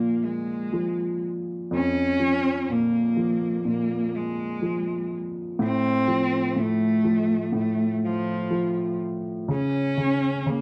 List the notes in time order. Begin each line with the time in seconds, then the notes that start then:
Already playing: A#2 F3 A#3
0.24 G#3
0.73 F3
1.71 F2 C#4
2.19 F3
2.69 A#2 A#3
3.17 F3
3.65 A#2 A#3
4.16 G#3
4.62 F3
5.59 A2 C4
6.08 F3
6.56 A2 A3
7.04 F3
7.52 A2
7.56 A3
8.05 F3
8.51 F3
9.48 C#3
9.53 C#4
9.97 C#3
10.46 C#3 A#3